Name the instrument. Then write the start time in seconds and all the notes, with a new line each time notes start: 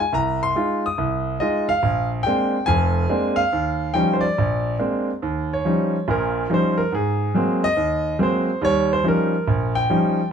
grand piano
0.00 G#5
0.13 C2 A#5
0.43 C6
0.55 G#3 D#4 F4
0.86 D#6
0.98 C2
1.40 G#3 D#4 F4 D#5
1.69 F5
1.83 A#1
2.23 G#3 A#3 C4 D4 G5
2.66 F1 F2 G#5
3.10 G#3 A#3 C4 D4
3.36 F5
3.53 D#2
3.94 F3 G3 C#4 D#4 G5
4.13 C5
4.21 D5
4.38 A#1
4.79 G#3 A#3 C4 D4
5.22 D#2
5.53 C#5
5.65 F3 G3 C#4 D#4
6.08 A#1 A#2 A#4
6.50 F3 G3 C#4 D#4
6.54 C5
6.78 A#4
6.92 G#2 G#4
7.35 F#3 G#3 A#3 C4
7.64 D#5
7.77 D#2
8.19 F#3 G#3 A#3 C4
8.23 C5
8.61 D#2 G3 C#5
8.93 C5
9.04 F3 G3 C#4 D#4
9.08 A#4
9.48 A#1
9.75 G5
9.90 F3 G3 C#4 D#4